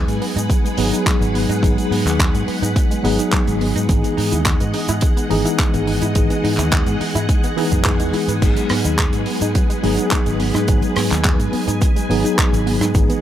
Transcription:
Already playing: F#3 G#3 B3 D#4 G#4 B4 F#5
0.07 G#2 G#3, closed hi-hat, shaker
0.22 B3, open hi-hat
0.36 G#2 D#4, closed hi-hat, shaker
0.50 F#3, kick, closed hi-hat, shaker
0.65 G#3, closed hi-hat, shaker
0.77 G#1 F#3 B3 D#4 G#4, open hi-hat
0.93 D#4, closed hi-hat, shaker
1.06 F#3, kick, clap, closed hi-hat, shaker
1.21 G#1 G#3, closed hi-hat, shaker
1.35 B3, open hi-hat
1.49 G#2 D#4, closed hi-hat, shaker
1.62 G#1 F#3 B3 D#4 G#4, kick, closed hi-hat, shaker
1.78 G#3, closed hi-hat, shaker
1.91 G#2 B3, open hi-hat
2.05 D#2 D#4, clap, closed hi-hat, shaker
2.19 F#3, kick, clap, closed hi-hat, shaker
2.34 G#2 G#3, closed hi-hat, shaker
2.48 B3, muted fingered electric bass stroke, open hi-hat
2.62 G#2 D#4, closed hi-hat, shaker
2.76 F#3, kick, closed hi-hat, shaker
2.91 G#3, closed hi-hat, shaker
3.03 G#1 F#3 B3 D#4 G#4, open hi-hat
3.19 D#4, closed hi-hat, shaker
3.32 F#3, kick, clap, closed hi-hat, shaker
3.47 G#1 G#3, closed hi-hat, shaker
3.61 B3, open hi-hat
3.76 G#2 D#4, closed hi-hat, shaker
3.88 G#1 E3 G#3 B3 D#4 G#4 D#5 F#5, kick, closed hi-hat, shaker
4.04 B3, closed hi-hat, shaker
4.17 G#2 D#4, open hi-hat
4.31 D#2 E4, closed hi-hat, shaker
4.45 G#3, kick, clap, closed hi-hat, shaker
4.60 G#2 B3, closed hi-hat, shaker
4.74 D#4, open hi-hat
4.88 G#2 E4, closed hi-hat, shaker
5.01 G#3, kick, closed hi-hat, shaker
5.17 B3, closed hi-hat, shaker
5.29 G#1 E3 B3 D#4 G#4, open hi-hat
5.45 E4, closed hi-hat, shaker
5.58 G#3, kick, clap, closed hi-hat, shaker
5.74 G#1 B3, closed hi-hat, shaker
5.87 D#4, open hi-hat
6.02 G#2 E4, closed hi-hat, shaker
6.15 G#1 E3 G#3 B3 D#4 G#4, kick, closed hi-hat, shaker
6.30 B3, closed hi-hat, shaker
6.44 G#2 D#4, open hi-hat
6.57 D#2 E4, clap, closed hi-hat, shaker
6.72 G#3, kick, clap, closed hi-hat, shaker
6.86 G#2 B3, closed hi-hat, shaker
7.00 D#4, muted fingered electric bass stroke, open hi-hat
7.15 G#2 E4, closed hi-hat, shaker
7.29 G#3, kick, closed hi-hat, shaker
7.44 B3, closed hi-hat, shaker
7.56 E3 B3 D#4 E4 G#4, open hi-hat
7.72 F#2 G#4, kick, closed hi-hat, shaker
7.85 E4, kick, clap, closed hi-hat, shaker
8.00 E2 G#3, closed hi-hat, shaker
8.13 E4, muted fingered electric bass stroke, open hi-hat
8.28 G#2 B4, closed hi-hat, shaker
8.41 G#1 F#3 B3 D#4 G#4 B4, kick, closed hi-hat, crash, shaker
8.56 G#3, closed hi-hat, shaker
8.69 G#2 B3, cross-stick, open hi-hat
8.84 D#2 D#4, closed hi-hat, shaker
8.98 F#3, kick, clap, closed hi-hat, shaker
9.13 G#2 G#3, closed hi-hat, shaker
9.26 B3, open hi-hat
9.41 G#2 D#4, closed hi-hat, shaker
9.55 F#3, kick, closed hi-hat, shaker
9.70 G#3, closed hi-hat, shaker
9.83 G#1 F#3 B3 D#4 G#4, open hi-hat
9.97 D#4, closed hi-hat, shaker
10.11 F#3, kick, clap, closed hi-hat, shaker
10.26 G#1 G#3, closed hi-hat, shaker
10.40 B3, open hi-hat
10.54 G#2 D#4, cross-stick, closed hi-hat, shaker
10.67 G#1 F#3 B3 D#4 G#4 G#5, kick, closed hi-hat, shaker
10.82 G#3, closed hi-hat, shaker
10.96 G#2 B3, cross-stick, open hi-hat
11.11 D#2 D#4, clap, closed hi-hat, shaker
11.24 F#3, kick, clap, closed hi-hat, shaker
11.39 G#2 G#3, closed hi-hat, shaker
11.53 B3, muted fingered electric bass stroke, open hi-hat
11.68 G#2 D#4, closed hi-hat, shaker
11.81 F#3, kick, closed hi-hat, shaker
11.96 G#3, closed hi-hat, shaker
12.09 G#1 F#3 B3 D#4 G#4, open hi-hat
12.24 D#4, closed hi-hat, shaker
12.38 F#3, kick, clap, closed hi-hat, shaker
12.53 G#1 G#3, closed hi-hat, shaker
12.66 B3, open hi-hat
12.81 G#2 D#4, cross-stick, closed hi-hat, shaker
12.94 G#1 E3 G#3 B3 D#4 G#4 D#5 F#5, kick, closed hi-hat, shaker
13.10 B3, closed hi-hat, shaker

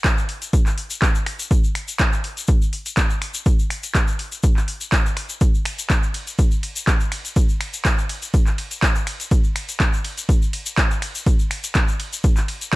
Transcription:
0.04 kick, clap, closed hi-hat, shaker
0.18 shaker
0.29 open hi-hat
0.42 closed hi-hat, shaker
0.53 kick, closed hi-hat, shaker
0.66 clap, shaker
0.78 open hi-hat
0.90 closed hi-hat, shaker
1.02 kick, clap, closed hi-hat, shaker
1.15 shaker
1.26 finger snap, open hi-hat
1.39 closed hi-hat, shaker
1.51 kick, closed hi-hat, shaker
1.64 shaker
1.75 finger snap, open hi-hat
1.88 closed hi-hat, shaker
1.99 kick, clap, closed hi-hat, shaker
2.13 shaker
2.24 open hi-hat
2.37 closed hi-hat, shaker
2.47 kick, closed hi-hat, shaker
2.62 shaker
2.73 open hi-hat
2.86 closed hi-hat, shaker
2.97 kick, clap, closed hi-hat, shaker
3.10 shaker
3.22 finger snap, open hi-hat
3.34 closed hi-hat, shaker
3.46 kick, closed hi-hat, shaker
3.59 shaker
3.70 finger snap, open hi-hat
3.83 closed hi-hat, shaker
3.95 kick, clap, closed hi-hat, shaker
4.08 shaker
4.19 open hi-hat
4.32 closed hi-hat, shaker
4.43 kick, closed hi-hat, shaker
4.57 clap, shaker
4.68 open hi-hat
4.81 closed hi-hat, shaker
4.92 kick, clap, closed hi-hat, shaker
5.06 shaker
5.17 finger snap, open hi-hat
5.29 closed hi-hat, shaker
5.41 kick, closed hi-hat, shaker
5.55 shaker
5.65 finger snap, open hi-hat, ride
5.78 closed hi-hat, shaker
5.90 kick, clap, closed hi-hat, shaker
6.03 shaker
6.14 open hi-hat, ride
6.27 closed hi-hat, shaker
6.39 kick, closed hi-hat, shaker
6.51 shaker
6.63 open hi-hat, ride
6.76 closed hi-hat, shaker
6.87 kick, clap, closed hi-hat, shaker
7.00 shaker
7.12 finger snap, open hi-hat, ride
7.25 closed hi-hat, shaker
7.36 kick, closed hi-hat, shaker
7.49 shaker
7.61 finger snap, open hi-hat, ride
7.74 closed hi-hat, shaker
7.85 kick, clap, closed hi-hat, shaker
7.98 shaker
8.09 open hi-hat, ride
8.22 closed hi-hat, shaker
8.34 kick, closed hi-hat, shaker
8.47 clap, shaker
8.58 open hi-hat, ride
8.71 closed hi-hat, shaker
8.83 kick, clap, closed hi-hat, shaker
8.95 shaker
9.07 finger snap, open hi-hat, ride
9.20 closed hi-hat, shaker
9.31 kick, closed hi-hat, shaker
9.44 shaker
9.56 finger snap, open hi-hat, ride
9.69 closed hi-hat, shaker
9.80 kick, clap, closed hi-hat, shaker
9.93 shaker
10.04 open hi-hat, ride
10.18 closed hi-hat, shaker
10.29 kick, closed hi-hat, shaker
10.42 shaker
10.53 open hi-hat, ride
10.66 closed hi-hat, shaker
10.78 kick, clap, closed hi-hat, shaker
10.91 shaker
11.02 finger snap, open hi-hat, ride
11.15 closed hi-hat, shaker
11.26 kick, closed hi-hat, shaker
11.39 shaker
11.51 finger snap, open hi-hat, ride
11.64 closed hi-hat, shaker
11.75 kick, clap, closed hi-hat, shaker
11.88 shaker
12.00 open hi-hat, ride
12.13 open hi-hat, shaker
12.24 kick, closed hi-hat, shaker
12.36 clap, shaker
12.48 open hi-hat, ride
12.61 closed hi-hat, shaker

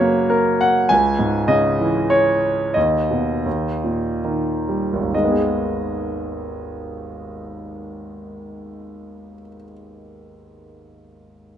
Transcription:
Already playing: F#2 C#3 F#3 A#4 B4 C#5
0.01 A#3
0.30 A#4
0.61 F#5
0.89 C#2 G#5
1.19 G#2
1.48 C#3 D#5
1.80 E3
2.10 C#5
2.74 D#2 D#5
3.11 B2
3.46 D#2
3.84 A#2
4.25 D#3
4.69 G3
4.93 G#1
5.01 D#2
5.09 D#3
5.14 G#3 D#5
5.24 B3
5.32 G#4

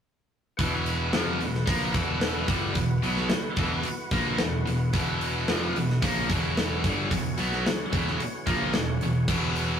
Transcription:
0.57 E1 E2 B2 E3 B3 F#4, kick, open hi-hat
0.86 open hi-hat
1.13 F1 F2 C3 F3, snare, open hi-hat
1.39 E1 E2 B2, open hi-hat
1.54 snare
1.66 A#1 A#2 F3 A#3, kick, open hi-hat
1.94 E1 E2 B2 E3, kick, open hi-hat
2.21 snare, open hi-hat
2.47 G1 G2 D3 G3, kick, open hi-hat
2.74 E1 E2 B2, kick, open hi-hat
3.02 B1 B2 F#3 B3, open hi-hat
3.17 snare
3.29 muted distorted electric guitar stroke, muted picked electric bass stroke, snare, open hi-hat
3.56 E1 E2 B2 E3, kick, open hi-hat
3.83 muted distorted electric guitar stroke, muted picked electric bass stroke, open hi-hat
4.11 A#1 A#2 F3 A#3, kick, open hi-hat
4.38 E1 E2 B2, snare, open hi-hat
4.65 E1 E2 B2, open hi-hat
4.93 E1 E2 B2 E3, kick, open hi-hat
5.21 open hi-hat
5.48 F1 F2 C3 F3, snare, open hi-hat
5.76 E1 E2 B2, open hi-hat
5.90 snare
6.02 A#1 A#2 F3 A#3 C#4, kick, open hi-hat
6.30 E1 E2 B2 E3, kick, open hi-hat
6.57 snare, open hi-hat
6.84 G1 G2 D3 G3, kick, open hi-hat
7.11 E1 E2 B2, kick, open hi-hat
7.37 B1 B2 F#3 B3, open hi-hat
7.52 snare
7.66 muted distorted electric guitar stroke, muted picked electric bass stroke, snare, open hi-hat
7.92 E1 E2 B2 E3, kick, open hi-hat
8.08 snare
8.20 muted picked electric bass stroke, muted distorted electric guitar stroke, open hi-hat
8.46 A#1 A#2 F3 A#3, kick, open hi-hat
8.73 E1 E2 B2, snare, open hi-hat
9.01 E1 E2 B2, open hi-hat
9.28 E1 E2 B2 E3, kick, crash
9.55 open hi-hat

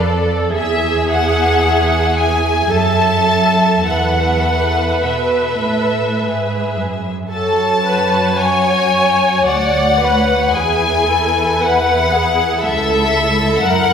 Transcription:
Already playing: F2 A4 D5
0.02 A4
0.54 E2 G#4 E5
1.10 F#5
2.19 G#5
2.71 F#2 A4 E5 A5
3.86 E2 A4 B4 E5 F#5
5.05 B2 A4 E5
5.63 A2
6.20 G#2 G#4 E5
6.77 F#2
7.32 F#2 F#4 A4 C#5 A5
7.86 B4
8.39 C#5 G#5
9.46 D2 D5 F#5
9.99 B4
10.52 E2 E4 G#4 B4 G#5
11.08 A4
11.62 B4 F#5
12.13 G#4
12.62 C#2 A4 E5
13.61 F#2 A#4 F#5

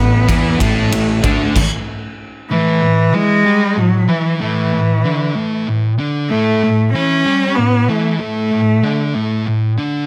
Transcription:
Already playing: A1 A2 B3 A4 F#5 C#6
0.28 E2 E3 E4, kick, ride
0.59 A1 A2 A3, kick, ride
0.91 A1 A2, ride
1.23 D2 D3 D4, kick, ride
1.56 kick, crash
2.50 A2 E3 A3
2.82 A2
3.13 E3 G#3 E4
3.44 G3 G4
3.77 A2 F#3
4.08 E3 E4
4.40 A2 E3 A3
4.73 A2
5.04 D3 D4
5.36 A2 A3
5.67 A2
5.98 D3 D4
6.29 A2 A3
6.63 A2
6.93 E3 C#4 E4
7.25 G3 G4
7.55 A2 B3
7.88 E3 A3 E4
8.20 A2 A3
8.52 A2
8.83 D3 D4
9.15 A2 A3
9.47 A2
9.77 D3 D4

